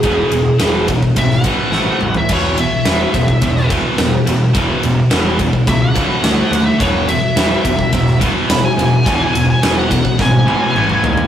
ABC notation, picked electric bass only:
X:1
M:4/4
L:1/8
Q:1/4=106
K:Emix
V:1 name="Picked electric bass" clef=bass
E,,, E,,, E,,,2 G,,,2 A,,, A,,, | E,,,2 E,,, E,,, E,,,2 E,,, E,,, | E,,, E,,, E,,,2 C,,2 D,, ^D,, | E,,,2 E,,, E,,, E,,,2 E,,, E,,, |
E,,, E,,, E,,,2 G,,,2 A,,, ^D,, |]